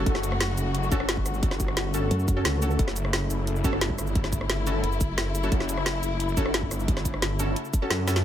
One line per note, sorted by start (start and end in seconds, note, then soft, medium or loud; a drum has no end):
0.00 8.21 C#3 medium
0.00 8.21 A3 medium
0.00 0.12 C#4 medium
0.00 0.12 F#4 medium
0.00 2.77 F#4 medium
0.00 0.12 A4 loud
0.06 0.56 F#1 loud
0.06 kick loud
0.06 closed hi-hat medium
0.15 cross-stick soft
0.15 snare soft
0.23 closed hi-hat medium
0.23 shaker medium
0.32 cross-stick soft
0.41 snare loud
0.41 closed hi-hat medium
0.58 0.90 F#1 loud
0.58 closed hi-hat medium
0.58 shaker medium
0.75 closed hi-hat medium
0.83 shaker soft
0.92 1.24 G1 loud
0.92 1.00 C#4 loud
0.92 1.00 F#4 medium
0.92 1.00 A4 loud
0.92 kick loud
0.92 closed hi-hat medium
0.92 shaker medium
1.00 cross-stick medium
1.09 snare loud
1.09 closed hi-hat medium
1.17 kick medium
1.26 2.10 G1 medium
1.26 cross-stick soft
1.26 closed hi-hat medium
1.26 shaker medium
1.34 shaker soft
1.43 kick loud
1.43 closed hi-hat medium
1.51 cross-stick soft
1.51 snare soft
1.60 kick medium
1.60 closed hi-hat medium
1.60 shaker medium
1.68 cross-stick soft
1.77 snare loud
1.77 closed hi-hat medium
1.94 2.08 C#4 medium
1.94 2.08 F#4 medium
1.94 2.08 A4 medium
1.94 closed hi-hat medium
1.94 shaker medium
2.11 2.44 F#2 loud
2.11 closed hi-hat medium
2.19 shaker soft
2.28 kick loud
2.28 closed hi-hat medium
2.28 shaker medium
2.37 2.60 C#4 medium
2.37 2.60 F#4 medium
2.37 2.60 A4 medium
2.45 2.78 C#2 loud
2.45 snare loud
2.45 closed hi-hat medium
2.62 2.76 C#4 medium
2.62 2.76 F#4 medium
2.62 2.76 A4 medium
2.62 closed hi-hat medium
2.62 shaker medium
2.71 shaker soft
2.79 3.29 F#1 loud
2.79 8.22 E4 medium
2.79 kick loud
2.79 closed hi-hat medium
2.88 cross-stick soft
2.88 snare soft
2.96 closed hi-hat medium
2.96 shaker medium
3.05 cross-stick soft
3.13 snare loud
3.13 closed hi-hat medium
3.30 3.63 F#1 loud
3.30 closed hi-hat medium
3.30 shaker medium
3.47 closed hi-hat medium
3.56 shaker soft
3.64 3.97 G1 loud
3.64 3.73 C#4 medium
3.64 3.73 F#4 medium
3.64 3.73 A4 loud
3.64 kick loud
3.64 closed hi-hat medium
3.64 shaker medium
3.73 cross-stick medium
3.81 snare loud
3.81 closed hi-hat medium
3.90 kick medium
3.98 4.82 G1 loud
3.98 cross-stick soft
3.98 closed hi-hat medium
3.98 shaker medium
4.07 shaker soft
4.15 kick loud
4.15 closed hi-hat medium
4.24 cross-stick soft
4.24 snare soft
4.33 kick medium
4.33 closed hi-hat medium
4.33 shaker medium
4.41 cross-stick soft
4.50 snare loud
4.50 closed hi-hat medium
4.67 4.80 C#4 medium
4.67 4.80 F#4 medium
4.67 4.80 A4 medium
4.67 closed hi-hat medium
4.67 shaker medium
4.84 5.50 F#1 loud
4.84 closed hi-hat medium
4.92 shaker soft
5.01 kick loud
5.01 closed hi-hat medium
5.01 shaker medium
5.18 snare loud
5.18 closed hi-hat medium
5.35 closed hi-hat medium
5.35 shaker medium
5.43 5.57 C#4 medium
5.43 5.57 F#4 medium
5.43 5.57 A4 loud
5.43 shaker soft
5.52 6.02 F#1 loud
5.52 kick loud
5.52 closed hi-hat loud
5.60 cross-stick soft
5.60 snare soft
5.69 closed hi-hat medium
5.69 shaker medium
5.77 cross-stick soft
5.86 snare loud
5.86 closed hi-hat loud
6.03 6.36 F#1 loud
6.03 closed hi-hat medium
6.03 shaker medium
6.20 closed hi-hat medium
6.29 shaker soft
6.37 6.70 G1 loud
6.37 6.46 C#4 medium
6.37 6.46 F#4 medium
6.37 6.46 A4 loud
6.37 kick loud
6.37 closed hi-hat medium
6.37 shaker medium
6.46 cross-stick medium
6.54 snare loud
6.54 closed hi-hat medium
6.63 kick medium
6.71 7.55 G1 loud
6.71 cross-stick soft
6.71 closed hi-hat medium
6.71 shaker medium
6.80 shaker soft
6.88 kick loud
6.88 closed hi-hat loud
6.97 cross-stick soft
6.97 snare soft
7.05 kick medium
7.05 closed hi-hat medium
7.05 shaker medium
7.14 cross-stick soft
7.22 snare loud
7.22 closed hi-hat loud
7.39 7.53 C#4 medium
7.39 7.53 F#4 medium
7.39 7.53 A4 medium
7.39 closed hi-hat medium
7.39 shaker medium
7.56 closed hi-hat loud
7.65 shaker soft
7.73 kick loud
7.73 closed hi-hat medium
7.73 shaker medium
7.82 8.05 C#4 medium
7.82 8.05 F#4 medium
7.82 8.05 A4 medium
7.91 8.23 F#2 loud
7.91 snare loud
7.91 closed hi-hat loud
8.08 8.21 C#4 medium
8.08 8.21 F#4 medium
8.08 8.21 A4 medium
8.08 snare medium
8.08 closed hi-hat medium
8.08 shaker medium
8.16 snare medium
8.16 shaker soft